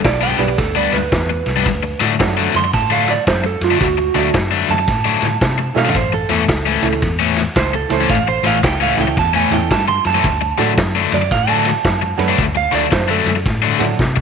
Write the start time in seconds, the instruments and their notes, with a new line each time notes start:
0.04 fingered electric bass B1, electric slide guitar D5, muted overdriven electric guitar stroke, kick, snare, ride
0.21 overdriven electric guitar G2 G3 B3 D4, electric slide guitar G5
0.38 fingered electric bass B1, upright piano G3 B3 D4 G4 B4, electric slide guitar D5, snare, ride
0.49 muted overdriven electric guitar stroke
0.58 fingered electric bass D2, electric slide guitar A4, kick, snare, ride
0.75 overdriven electric guitar G2 G3 B3 D4, electric slide guitar D5
0.92 fingered electric bass D2, electric slide guitar B4, snare, ride
1.12 fingered electric bass E2, kick, snare, ride
1.30 muted overdriven electric guitar stroke
1.46 fingered electric bass C2, snare, ride
1.56 overdriven electric guitar G2 G3 B3 D4
1.66 fingered electric bass D2, kick, snare, ride
1.83 muted overdriven electric guitar stroke
2.00 fingered electric bass A2, overdriven electric guitar D3 F#3 A3 D4, snare, ride
2.19 fingered electric bass F#2, upright piano F#3 A3 D4 F#4 A4, muted overdriven electric guitar stroke, kick, snare, ride
2.37 overdriven electric guitar D3 F#3 A3 D4
2.54 fingered electric bass F#2, electric slide guitar C6, snare, ride
2.64 muted overdriven electric guitar stroke
2.73 fingered electric bass A2, electric slide guitar A5, kick, snare, ride
2.90 overdriven electric guitar D3 F#3 A3 D4, electric slide guitar F5
3.07 electric slide guitar D5, snare, ride
3.27 fingered electric bass F#2, electric slide guitar C5, kick, snare, ride
3.44 electric slide guitar A4, muted overdriven electric guitar stroke
3.61 fingered electric bass F#2, electric slide guitar F4, snare, ride
3.70 overdriven electric guitar D3 F#3 A3 D4
3.81 fingered electric bass D2, electric slide guitar F#4, kick, snare, ride
3.98 muted overdriven electric guitar stroke
4.14 fingered electric bass D2, overdriven electric guitar D3 F#3 A3 D4, upright piano F#3 A3 D4 F#4 A4, snare, ride
4.34 fingered electric bass F#2, muted overdriven electric guitar stroke, kick, snare, ride
4.51 overdriven electric guitar D3 F#3 A3 D4
4.68 fingered electric bass F#2, electric slide guitar A5, snare, ride
4.78 muted overdriven electric guitar stroke
4.88 fingered electric bass A2, kick, snare, ride
5.05 overdriven electric guitar D3 F#3 A3 D4
5.22 fingered electric bass A2, snare, ride
5.41 fingered electric bass C3, kick, snare, ride
5.58 muted overdriven electric guitar stroke
5.74 fingered electric bass B2, upright piano E3 A3 C#4 E4 A4, electric slide guitar F5, snare
5.85 overdriven electric guitar D3 F#3 A3 D4, floor tom
5.95 fingered electric bass A1, electric slide guitar C5, kick, snare, ride
6.12 electric slide guitar A4, muted overdriven electric guitar stroke
6.29 fingered electric bass E2, overdriven electric guitar A2 E3 A3 C#4, snare, ride
6.49 fingered electric bass C#2, muted overdriven electric guitar stroke, kick, snare, ride
6.66 overdriven electric guitar A2 E3 A3 C#4
6.81 fingered electric bass C#2, upright piano E3 A3 C#4 E4 A4, snare, ride
6.93 muted overdriven electric guitar stroke
7.02 fingered electric bass E2, kick, snare, ride
7.19 overdriven electric guitar A2 E3 A3 C#4
7.36 snare, ride
7.56 fingered electric bass C#2, electric slide guitar C5, kick, snare, ride
7.74 electric slide guitar A4, muted overdriven electric guitar stroke
7.89 fingered electric bass C#2, upright piano E3 A3 C#4 E4 A4, electric slide guitar C5, snare, ride
8.01 overdriven electric guitar A2 E3 A3 C#4
8.09 fingered electric bass A1, electric slide guitar F5, kick, snare, ride
8.28 electric slide guitar C5, muted overdriven electric guitar stroke
8.43 fingered electric bass A1, overdriven electric guitar A2 E3 A3 C#4, electric slide guitar F5, snare, ride
8.63 fingered electric bass C#2, electric slide guitar G5, muted overdriven electric guitar stroke, kick, snare, ride
8.80 overdriven electric guitar A2 E3 A3 C#4, electric slide guitar F5
8.97 fingered electric bass C#2, upright piano E3 A3 C#4 E4 A4, snare, ride
9.01 electric slide guitar G5
9.08 muted overdriven electric guitar stroke
9.17 fingered electric bass E2, electric slide guitar A5, kick, snare, ride
9.34 overdriven electric guitar A2 E3 A3 C#4, electric slide guitar G#5
9.51 fingered electric bass E2, upright piano E3 A3 C#4 E4 A4, electric slide guitar G5, snare, ride
9.71 fingered electric bass G2, electric slide guitar A5, kick, snare, ride
9.88 electric slide guitar C6, muted overdriven electric guitar stroke
10.04 fingered electric bass F#2, electric slide guitar A5, snare, ride
10.15 overdriven electric guitar A2 E3 A3 C#4
10.24 fingered electric bass D2, kick, snare, ride
10.41 muted overdriven electric guitar stroke
10.58 fingered electric bass A2, overdriven electric guitar D3 F#3 A3 D4, upright piano F#3 A3 D4 F#4 A4, snare, ride
10.77 fingered electric bass F#2, muted overdriven electric guitar stroke, kick, snare, ride
10.95 overdriven electric guitar D3 F#3 A3 D4
11.12 fingered electric bass F#2, electric slide guitar D5, snare, ride
11.22 muted overdriven electric guitar stroke
11.31 fingered electric bass A2, electric slide guitar F5, kick, snare, ride
11.48 overdriven electric guitar D3 F#3 A3 D4, electric slide guitar A5
11.65 snare, ride
11.84 fingered electric bass F#2, kick, snare, ride
12.02 muted overdriven electric guitar stroke
12.18 fingered electric bass F#2, upright piano F#3 A3 D4 F#4 B4, snare, ride
12.28 overdriven electric guitar D3 F#3 A3 D4
12.38 fingered electric bass D2, kick, snare, ride
12.55 electric slide guitar F5, muted overdriven electric guitar stroke
12.72 fingered electric bass D2, overdriven electric guitar D3 F#3 A3 D4, electric slide guitar D5, snare, ride
12.91 fingered electric bass F#2, electric slide guitar C5, muted overdriven electric guitar stroke, kick, snare, ride
13.08 overdriven electric guitar D3 F#3 A3 D4, electric slide guitar A4
13.26 fingered electric bass F#2, snare, ride
13.36 muted overdriven electric guitar stroke
13.46 fingered electric bass A2, kick, snare, ride
13.62 overdriven electric guitar D3 F#3 A3 D4
13.79 fingered electric bass A2, upright piano F#3 A3 D4 F#4 A4, snare, ride
13.99 fingered electric bass C3, kick, snare
14.16 muted overdriven electric guitar stroke, kick